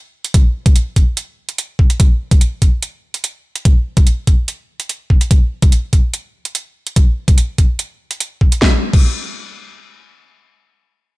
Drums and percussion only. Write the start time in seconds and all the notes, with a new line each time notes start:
0.24 closed hi-hat
0.34 kick, closed hi-hat
0.66 kick, closed hi-hat
0.76 closed hi-hat
0.96 kick, closed hi-hat
1.17 closed hi-hat
1.49 closed hi-hat
1.58 closed hi-hat
1.79 kick
1.90 closed hi-hat
2.00 kick, closed hi-hat
2.31 kick, closed hi-hat
2.41 closed hi-hat
2.62 kick, closed hi-hat
2.83 closed hi-hat
3.14 closed hi-hat
3.24 closed hi-hat
3.56 closed hi-hat
3.65 kick, closed hi-hat
3.97 kick, closed hi-hat
4.07 closed hi-hat
4.27 kick, closed hi-hat
4.48 closed hi-hat
4.80 closed hi-hat
4.89 closed hi-hat
5.10 kick
5.21 closed hi-hat
5.31 kick, closed hi-hat
5.62 kick, closed hi-hat
5.72 closed hi-hat
5.93 kick, closed hi-hat
6.14 closed hi-hat
6.45 closed hi-hat
6.55 closed hi-hat
6.87 closed hi-hat
6.96 kick, closed hi-hat
7.28 kick, closed hi-hat
7.38 closed hi-hat
7.58 kick, closed hi-hat
7.79 closed hi-hat
8.11 closed hi-hat
8.20 closed hi-hat
8.41 kick
8.52 closed hi-hat
8.62 kick, snare
8.93 kick, crash